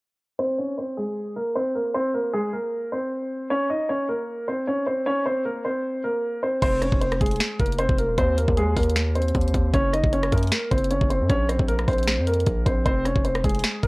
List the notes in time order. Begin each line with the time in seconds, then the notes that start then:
0.39 C4 C5
0.58 C#4 C#5
0.78 C4 C5
0.97 G#3 G#4
1.36 A#3 A#4
1.55 C4 C5
1.75 A#3 A#4
1.94 C4 C5
2.14 A#3 A#4
2.33 G#3 G#4
2.53 A#3 A#4
2.92 C4 C5
3.50 C#4 C#5
3.70 D#4 D#5
3.89 C#4 C#5
4.09 A#3 A#4
4.48 C4 C5
4.67 C#4 C#5
4.87 C4 C5
5.06 C#4 C#5
5.26 C4 C5
5.45 A#3 A#4
5.65 C4 C5
6.04 A#3 A#4
6.43 C4 C5
6.62 F1 C4 C5, kick, closed hi-hat, crash
6.81 C#4 C#5, cross-stick, closed hi-hat
6.92 F1, kick
7.01 C4 C5, closed hi-hat
7.12 cross-stick, closed hi-hat
7.20 F1 G#3 G#4, kick, closed hi-hat
7.26 closed hi-hat
7.31 closed hi-hat
7.36 closed hi-hat
7.40 finger snap, snare, closed hi-hat
7.60 F1 A#3 A#4, kick, closed hi-hat
7.66 closed hi-hat
7.73 closed hi-hat
7.79 C4 C5, closed hi-hat
7.89 F1, kick
7.99 A#3 A#4, closed hi-hat
8.09 D#1
8.18 D#2 C4 C5, kick, closed hi-hat
8.37 A#3 A#4, closed hi-hat
8.48 D#2, kick
8.57 G#3 G#4, closed hi-hat
8.76 D#2 A#3 A#4, kick, closed hi-hat, open hi-hat
8.83 closed hi-hat
8.89 closed hi-hat
8.96 finger snap, snare, closed hi-hat
9.15 C4 C5, closed hi-hat
9.22 closed hi-hat
9.28 closed hi-hat
9.35 D#2, kick, closed hi-hat
9.41 closed hi-hat
9.48 closed hi-hat
9.54 D#2, kick, closed hi-hat
9.74 F#1 C#4 C#5, kick, closed hi-hat
9.93 D#4 D#5, cross-stick, closed hi-hat
10.04 F#1, kick
10.13 C#4 C#5, closed hi-hat
10.23 cross-stick, closed hi-hat
10.32 F#2 A#3 A#4, kick, closed hi-hat
10.37 closed hi-hat
10.43 closed hi-hat
10.47 closed hi-hat
10.52 finger snap, snare, closed hi-hat
10.71 F#1 C4 C5, kick, closed hi-hat
10.78 closed hi-hat
10.84 closed hi-hat
10.90 C#4 C#5, closed hi-hat
11.01 F#1, kick
11.10 C4 C5, closed hi-hat
11.20 F#2
11.29 A#1 C#4 C#5, kick, closed hi-hat
11.49 C4 C5, cross-stick, closed hi-hat
11.59 A#1, kick
11.68 A#3 A#4, closed hi-hat
11.79 cross-stick, closed hi-hat
11.88 A#1 C4 C5, kick, closed hi-hat, open hi-hat
11.93 closed hi-hat
11.98 closed hi-hat
12.03 closed hi-hat
12.08 finger snap, snare, closed hi-hat
12.18 F2
12.27 A#3 A#4, closed hi-hat
12.34 closed hi-hat
12.40 closed hi-hat
12.46 A#1, kick, closed hi-hat
12.66 A#1 C4 C5, kick, closed hi-hat
12.85 F1 C4 C5, kick, closed hi-hat
13.05 C#4 C#5, cross-stick, closed hi-hat
13.15 F1, kick
13.24 C4 C5, closed hi-hat
13.35 cross-stick, closed hi-hat
13.44 F1 G#3 G#4, kick, closed hi-hat
13.49 closed hi-hat
13.54 closed hi-hat
13.59 closed hi-hat
13.64 finger snap, snare, closed hi-hat
13.83 F1 A#3 A#4, kick, closed hi-hat